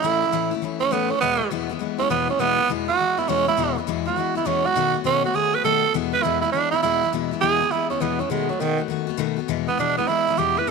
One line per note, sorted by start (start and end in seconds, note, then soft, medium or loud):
0.00 0.22 A2 medium
0.00 0.23 E3 medium
0.00 0.52 E4 loud
0.04 0.23 A3 medium
0.04 0.23 C#4 medium
0.04 0.21 E4 loud
0.22 0.32 A3 medium
0.22 0.33 C#4 medium
0.22 0.33 E4 medium
0.32 0.52 A2 medium
0.32 0.52 E3 medium
0.32 0.52 A3 loud
0.32 0.52 C#4 medium
0.32 0.50 E4 loud
0.51 0.61 A3 medium
0.51 0.63 C#4 medium
0.51 0.62 E4 medium
0.62 0.81 E3 medium
0.62 0.82 A3 medium
0.62 0.80 C#4 medium
0.62 0.79 E4 medium
0.80 0.91 A3 medium
0.80 0.94 C#4 loud
0.80 0.91 C#4 medium
0.80 0.91 E4 medium
0.91 1.11 A2 medium
0.91 1.11 E3 medium
0.91 1.11 A3 loud
0.91 1.12 B3 medium
0.91 1.11 C#4 medium
0.91 1.09 E4 medium
1.10 1.22 A3 soft
1.10 1.20 C#4 medium
1.10 1.22 C#4 medium
1.10 1.21 E4 medium
1.21 1.41 E2 medium
1.21 1.41 B2 medium
1.21 1.41 E3 loud
1.21 1.41 G#3 medium
1.21 1.50 B3 loud
1.21 1.40 B3 medium
1.21 1.39 E4 medium
1.40 1.50 E3 soft
1.40 1.51 G#3 medium
1.40 1.51 B3 medium
1.40 1.51 E4 medium
1.51 1.70 E2 medium
1.51 1.70 B2 medium
1.51 1.70 E3 medium
1.51 1.70 G#3 medium
1.51 1.69 B3 medium
1.51 1.68 E4 medium
1.69 1.78 E3 medium
1.69 1.79 G#3 medium
1.69 1.80 B3 medium
1.69 1.80 E4 medium
1.79 1.99 E3 medium
1.79 2.00 G#3 medium
1.79 1.99 B3 medium
1.79 1.97 E4 medium
1.98 2.09 E3 medium
1.98 2.09 G#3 medium
1.98 2.10 B3 medium
1.98 2.10 C#4 loud
1.98 2.10 E4 medium
2.09 2.29 E2 medium
2.09 2.29 B2 medium
2.09 2.30 E3 medium
2.09 2.30 G#3 medium
2.09 2.29 B3 loud
2.09 2.29 B3 medium
2.09 2.27 E4 medium
2.29 2.39 E3 soft
2.29 2.39 G#3 soft
2.29 2.40 B3 medium
2.29 2.41 C#4 medium
2.29 2.39 E4 medium
2.39 2.58 E2 medium
2.39 2.59 B2 medium
2.39 2.59 E3 medium
2.39 2.59 G#3 medium
2.39 2.68 B3 loud
2.39 2.58 B3 loud
2.39 2.57 E4 loud
2.58 2.69 G#3 soft
2.58 2.69 B3 soft
2.58 2.69 E4 medium
2.68 2.88 E2 medium
2.68 2.89 B2 medium
2.68 2.89 E3 medium
2.68 2.88 G#3 medium
2.68 2.88 B3 medium
2.68 2.87 E4 medium
2.88 2.97 E3 soft
2.88 2.99 B3 medium
2.88 2.99 E4 medium
2.88 3.20 F#4 loud
2.98 3.18 E3 medium
2.98 3.18 G#3 medium
2.98 3.17 B3 medium
2.98 3.16 E4 medium
3.17 3.28 E3 medium
3.17 3.28 G#3 soft
3.17 3.28 B3 medium
3.17 3.28 E4 medium
3.17 3.30 E4 medium
3.28 3.47 E2 medium
3.28 3.48 B2 medium
3.28 3.48 E3 medium
3.28 3.47 G#3 medium
3.28 3.46 B3 medium
3.28 3.47 C#4 loud
3.28 3.45 E4 medium
3.46 3.57 G#3 medium
3.46 3.57 B3 medium
3.46 3.57 E4 medium
3.46 3.77 E4 loud
3.57 3.76 E2 medium
3.57 3.77 B2 medium
3.57 3.77 E3 medium
3.57 3.77 G#3 medium
3.57 3.76 B3 medium
3.57 3.75 E4 medium
3.76 3.87 E3 soft
3.76 3.87 G#3 medium
3.76 3.88 B3 soft
3.76 3.87 E4 medium
3.87 4.06 E2 medium
3.87 4.07 B2 medium
3.87 4.07 E3 medium
3.87 4.07 G#3 medium
3.87 4.06 B3 loud
3.87 4.04 E4 loud
4.05 4.15 E3 medium
4.05 4.16 G#3 medium
4.05 4.17 B3 medium
4.05 4.17 E4 medium
4.05 4.35 F#4 medium
4.16 4.36 E3 medium
4.16 4.36 G#3 medium
4.16 4.36 B3 medium
4.16 4.34 E4 medium
4.35 4.45 E3 medium
4.35 4.45 G#3 medium
4.35 4.46 B3 medium
4.35 4.46 E4 medium
4.35 4.48 E4 medium
4.45 4.65 E2 medium
4.45 4.65 B2 medium
4.45 4.65 E3 medium
4.45 4.66 G#3 medium
4.45 4.65 B3 medium
4.45 4.67 C#4 loud
4.45 4.63 E4 loud
4.64 4.75 E3 soft
4.64 4.76 G#3 soft
4.64 4.76 B3 medium
4.64 4.75 E4 medium
4.64 4.94 F#4 loud
4.75 4.95 B2 medium
4.75 4.95 D#3 loud
4.75 4.95 A3 medium
4.75 4.95 B3 loud
4.75 4.93 F#4 loud
4.94 5.04 A3 soft
4.94 5.05 B3 medium
4.94 5.05 F#4 medium
5.04 5.24 B2 medium
5.04 5.24 D#3 medium
5.04 5.25 A3 medium
5.04 5.24 B3 medium
5.04 5.24 C#4 loud
5.04 5.23 F#4 medium
5.24 5.34 A3 medium
5.24 5.34 B3 medium
5.24 5.35 F#4 medium
5.24 5.37 F#4 medium
5.33 5.53 D#3 medium
5.33 5.54 A3 medium
5.33 5.54 B3 medium
5.33 5.52 F#4 medium
5.33 5.56 G#4 loud
5.54 5.64 A3 medium
5.54 5.64 B3 medium
5.54 5.64 F#4 medium
5.54 5.64 B4 medium
5.64 5.83 B2 medium
5.64 5.84 D#3 medium
5.64 5.84 A3 medium
5.64 5.84 B3 medium
5.64 5.83 F#4 medium
5.64 5.93 A4 loud
5.84 5.95 A3 soft
5.84 5.95 B3 soft
5.84 5.94 F#4 medium
5.94 6.13 E2 medium
5.94 6.13 B2 medium
5.94 6.14 E3 loud
5.94 6.14 G#3 medium
5.94 6.13 B3 medium
5.94 6.12 E4 loud
6.13 6.23 E3 soft
6.13 6.24 G#3 medium
6.13 6.24 B3 medium
6.13 6.24 E4 medium
6.13 6.24 B4 loud
6.22 6.43 E2 medium
6.22 6.43 B2 medium
6.22 6.43 E3 medium
6.22 6.44 G#3 medium
6.22 6.42 B3 medium
6.22 6.41 E4 loud
6.41 6.53 G#3 medium
6.41 6.54 B3 medium
6.41 6.51 E4 medium
6.41 6.53 E4 medium
6.45 6.52 E3 soft
6.52 6.72 E3 medium
6.52 6.73 G#3 medium
6.52 6.72 B3 medium
6.52 6.70 D4 loud
6.57 6.71 E4 medium
6.71 6.83 G#3 medium
6.71 6.83 B3 medium
6.71 6.82 E4 loud
6.71 6.83 E4 medium
6.76 6.82 E3 medium
6.82 7.02 E2 medium
6.82 7.02 B2 medium
6.82 7.02 E3 medium
6.82 7.02 G#3 loud
6.82 7.02 B3 medium
6.82 7.11 E4 loud
6.82 7.01 E4 medium
7.02 7.13 E3 medium
7.02 7.13 G#3 soft
7.02 7.13 B3 soft
7.02 7.12 E4 medium
7.13 7.32 E2 medium
7.13 7.32 B2 medium
7.13 7.32 E3 medium
7.13 7.32 G#3 medium
7.13 7.31 B3 medium
7.13 7.30 E4 loud
7.31 7.41 E3 medium
7.31 7.42 G#3 medium
7.31 7.42 B3 medium
7.31 7.42 E4 medium
7.41 7.61 E2 medium
7.41 7.61 B2 medium
7.41 7.61 E3 medium
7.41 7.62 G#3 medium
7.41 7.61 B3 medium
7.41 7.59 E4 medium
7.41 7.73 G#4 loud
7.61 7.70 E3 soft
7.61 7.71 G#3 soft
7.61 7.72 B3 medium
7.61 7.71 E4 medium
7.71 7.91 E3 medium
7.71 7.91 G#3 medium
7.71 7.90 B3 medium
7.71 7.89 E4 loud
7.71 7.89 E4 medium
7.90 8.00 E3 soft
7.90 8.00 G#3 soft
7.90 8.01 B3 medium
7.90 8.02 C#4 medium
7.90 8.01 E4 medium
8.00 8.20 E2 medium
8.00 8.20 B2 medium
8.00 8.20 E3 loud
8.00 8.20 G#3 medium
8.00 8.21 B3 medium
8.00 8.19 B3 medium
8.00 8.18 E4 medium
8.19 8.30 E3 soft
8.19 8.31 G#3 medium
8.19 8.30 B3 soft
8.19 8.32 C#4 medium
8.19 8.30 E4 medium
8.30 8.49 B2 medium
8.30 8.50 D#3 medium
8.30 8.51 G#3 medium
8.30 8.50 A3 medium
8.30 8.50 B3 loud
8.30 8.48 F#4 medium
8.49 8.62 F#3 medium
8.49 8.60 A3 soft
8.49 8.60 B3 medium
8.49 8.60 F#4 medium
8.60 8.79 B2 medium
8.60 8.79 D#3 loud
8.60 8.80 D#3 medium
8.60 8.80 A3 medium
8.60 8.79 B3 medium
8.60 8.77 F#4 medium
8.78 8.88 A3 soft
8.78 8.90 B3 medium
8.78 8.89 F#4 medium
8.88 9.08 D#3 medium
8.88 9.09 A3 medium
8.88 9.08 B3 medium
8.88 9.06 F#4 medium
9.07 9.18 A3 medium
9.07 9.18 B3 medium
9.07 9.18 F#4 medium
9.17 9.38 B2 loud
9.17 9.38 D#3 loud
9.17 9.38 A3 medium
9.17 9.38 B3 loud
9.17 9.35 F#4 loud
9.37 9.49 A3 soft
9.37 9.49 B3 medium
9.37 9.48 F#4 medium
9.48 9.68 E2 medium
9.48 9.68 B2 medium
9.48 9.68 E3 loud
9.48 9.68 G#3 medium
9.48 9.67 B3 loud
9.48 9.66 E4 loud
9.67 9.78 E3 soft
9.67 9.79 G#3 medium
9.67 9.78 B3 medium
9.67 9.79 B3 medium
9.67 9.78 E4 medium
9.78 9.98 E2 medium
9.78 9.98 B2 medium
9.78 9.98 E3 medium
9.78 9.98 G#3 loud
9.78 9.97 B3 medium
9.78 9.97 D4 loud
9.78 9.96 E4 medium
9.97 10.06 E3 soft
9.97 10.08 G#3 medium
9.97 10.09 B3 loud
9.97 10.09 B3 medium
9.97 10.08 E4 medium
10.07 10.27 E3 medium
10.07 10.28 G#3 medium
10.07 10.27 B3 medium
10.07 10.40 E4 loud
10.07 10.26 E4 medium
10.28 10.37 E3 medium
10.28 10.37 G#3 medium
10.28 10.37 B3 medium
10.28 10.38 E4 medium
10.37 10.57 E2 medium
10.37 10.57 B2 medium
10.37 10.57 E3 medium
10.37 10.57 G#3 medium
10.37 10.57 B3 medium
10.37 10.56 E4 medium
10.37 10.60 G4 medium
10.57 10.67 E3 soft
10.57 10.68 G#3 medium
10.57 10.68 B3 soft
10.57 10.67 E4 medium
10.57 10.70 B4 medium
10.67 10.71 B2 medium